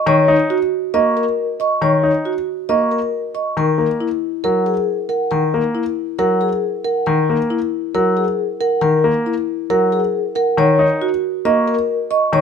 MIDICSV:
0, 0, Header, 1, 4, 480
1, 0, Start_track
1, 0, Tempo, 437956
1, 71, Time_signature, 4, 2, 24, 8
1, 13601, End_track
2, 0, Start_track
2, 0, Title_t, "Vibraphone"
2, 0, Program_c, 0, 11
2, 0, Note_on_c, 0, 85, 59
2, 76, Note_on_c, 0, 73, 74
2, 149, Note_off_c, 0, 85, 0
2, 385, Note_off_c, 0, 73, 0
2, 1032, Note_on_c, 0, 85, 55
2, 1280, Note_on_c, 0, 70, 62
2, 1344, Note_off_c, 0, 85, 0
2, 1586, Note_off_c, 0, 70, 0
2, 1761, Note_on_c, 0, 85, 60
2, 1994, Note_on_c, 0, 73, 67
2, 2067, Note_off_c, 0, 85, 0
2, 2304, Note_off_c, 0, 73, 0
2, 2956, Note_on_c, 0, 85, 54
2, 3194, Note_on_c, 0, 70, 53
2, 3265, Note_off_c, 0, 85, 0
2, 3504, Note_off_c, 0, 70, 0
2, 3666, Note_on_c, 0, 85, 49
2, 3917, Note_on_c, 0, 70, 65
2, 3982, Note_off_c, 0, 85, 0
2, 4226, Note_off_c, 0, 70, 0
2, 4870, Note_on_c, 0, 78, 53
2, 5110, Note_on_c, 0, 68, 55
2, 5183, Note_off_c, 0, 78, 0
2, 5423, Note_off_c, 0, 68, 0
2, 5583, Note_on_c, 0, 78, 53
2, 5818, Note_on_c, 0, 70, 63
2, 5901, Note_off_c, 0, 78, 0
2, 6139, Note_off_c, 0, 70, 0
2, 6780, Note_on_c, 0, 78, 56
2, 7023, Note_on_c, 0, 68, 53
2, 7099, Note_off_c, 0, 78, 0
2, 7340, Note_off_c, 0, 68, 0
2, 7504, Note_on_c, 0, 78, 50
2, 7741, Note_on_c, 0, 70, 62
2, 7821, Note_off_c, 0, 78, 0
2, 8060, Note_off_c, 0, 70, 0
2, 8713, Note_on_c, 0, 78, 49
2, 8950, Note_on_c, 0, 68, 52
2, 9024, Note_off_c, 0, 78, 0
2, 9263, Note_off_c, 0, 68, 0
2, 9431, Note_on_c, 0, 78, 54
2, 9660, Note_on_c, 0, 70, 71
2, 9744, Note_off_c, 0, 78, 0
2, 9980, Note_off_c, 0, 70, 0
2, 10633, Note_on_c, 0, 78, 58
2, 10876, Note_on_c, 0, 68, 58
2, 10944, Note_off_c, 0, 78, 0
2, 11185, Note_off_c, 0, 68, 0
2, 11348, Note_on_c, 0, 78, 60
2, 11598, Note_on_c, 0, 73, 74
2, 11662, Note_off_c, 0, 78, 0
2, 11906, Note_off_c, 0, 73, 0
2, 12553, Note_on_c, 0, 85, 55
2, 12796, Note_on_c, 0, 70, 66
2, 12864, Note_off_c, 0, 85, 0
2, 13105, Note_off_c, 0, 70, 0
2, 13268, Note_on_c, 0, 85, 59
2, 13515, Note_on_c, 0, 73, 76
2, 13582, Note_off_c, 0, 85, 0
2, 13601, Note_off_c, 0, 73, 0
2, 13601, End_track
3, 0, Start_track
3, 0, Title_t, "Marimba"
3, 0, Program_c, 1, 12
3, 0, Note_on_c, 1, 75, 74
3, 143, Note_off_c, 1, 75, 0
3, 550, Note_on_c, 1, 66, 61
3, 863, Note_off_c, 1, 66, 0
3, 1029, Note_on_c, 1, 75, 77
3, 1343, Note_off_c, 1, 75, 0
3, 1752, Note_on_c, 1, 75, 57
3, 2064, Note_off_c, 1, 75, 0
3, 2471, Note_on_c, 1, 66, 48
3, 2783, Note_off_c, 1, 66, 0
3, 2948, Note_on_c, 1, 75, 71
3, 3262, Note_off_c, 1, 75, 0
3, 3668, Note_on_c, 1, 75, 53
3, 3983, Note_off_c, 1, 75, 0
3, 4389, Note_on_c, 1, 64, 54
3, 4703, Note_off_c, 1, 64, 0
3, 4865, Note_on_c, 1, 70, 71
3, 5181, Note_off_c, 1, 70, 0
3, 5579, Note_on_c, 1, 70, 64
3, 5899, Note_off_c, 1, 70, 0
3, 6298, Note_on_c, 1, 64, 51
3, 6619, Note_off_c, 1, 64, 0
3, 6784, Note_on_c, 1, 70, 72
3, 7101, Note_off_c, 1, 70, 0
3, 7502, Note_on_c, 1, 70, 64
3, 7820, Note_off_c, 1, 70, 0
3, 8224, Note_on_c, 1, 64, 53
3, 8541, Note_off_c, 1, 64, 0
3, 8709, Note_on_c, 1, 70, 74
3, 9023, Note_off_c, 1, 70, 0
3, 9431, Note_on_c, 1, 70, 71
3, 9743, Note_off_c, 1, 70, 0
3, 10152, Note_on_c, 1, 64, 56
3, 10464, Note_off_c, 1, 64, 0
3, 10633, Note_on_c, 1, 70, 74
3, 10944, Note_off_c, 1, 70, 0
3, 11353, Note_on_c, 1, 70, 74
3, 11664, Note_off_c, 1, 70, 0
3, 12073, Note_on_c, 1, 66, 59
3, 12384, Note_off_c, 1, 66, 0
3, 12553, Note_on_c, 1, 75, 74
3, 12864, Note_off_c, 1, 75, 0
3, 13270, Note_on_c, 1, 75, 69
3, 13583, Note_off_c, 1, 75, 0
3, 13601, End_track
4, 0, Start_track
4, 0, Title_t, "Grand piano"
4, 0, Program_c, 2, 0
4, 71, Note_on_c, 2, 51, 75
4, 308, Note_on_c, 2, 63, 59
4, 383, Note_off_c, 2, 51, 0
4, 622, Note_off_c, 2, 63, 0
4, 1030, Note_on_c, 2, 58, 54
4, 1343, Note_off_c, 2, 58, 0
4, 1989, Note_on_c, 2, 51, 67
4, 2228, Note_on_c, 2, 63, 48
4, 2303, Note_off_c, 2, 51, 0
4, 2542, Note_off_c, 2, 63, 0
4, 2951, Note_on_c, 2, 58, 54
4, 3264, Note_off_c, 2, 58, 0
4, 3911, Note_on_c, 2, 51, 64
4, 4145, Note_on_c, 2, 58, 44
4, 4223, Note_off_c, 2, 51, 0
4, 4461, Note_off_c, 2, 58, 0
4, 4870, Note_on_c, 2, 54, 49
4, 5183, Note_off_c, 2, 54, 0
4, 5825, Note_on_c, 2, 51, 62
4, 6071, Note_on_c, 2, 58, 53
4, 6141, Note_off_c, 2, 51, 0
4, 6383, Note_off_c, 2, 58, 0
4, 6780, Note_on_c, 2, 54, 50
4, 7100, Note_off_c, 2, 54, 0
4, 7747, Note_on_c, 2, 51, 69
4, 7996, Note_on_c, 2, 58, 50
4, 8062, Note_off_c, 2, 51, 0
4, 8305, Note_off_c, 2, 58, 0
4, 8708, Note_on_c, 2, 54, 57
4, 9022, Note_off_c, 2, 54, 0
4, 9660, Note_on_c, 2, 51, 63
4, 9909, Note_on_c, 2, 58, 59
4, 9980, Note_off_c, 2, 51, 0
4, 10223, Note_off_c, 2, 58, 0
4, 10630, Note_on_c, 2, 54, 53
4, 10943, Note_off_c, 2, 54, 0
4, 11590, Note_on_c, 2, 51, 75
4, 11826, Note_on_c, 2, 63, 55
4, 11903, Note_off_c, 2, 51, 0
4, 12141, Note_off_c, 2, 63, 0
4, 12551, Note_on_c, 2, 58, 57
4, 12863, Note_off_c, 2, 58, 0
4, 13509, Note_on_c, 2, 51, 76
4, 13601, Note_off_c, 2, 51, 0
4, 13601, End_track
0, 0, End_of_file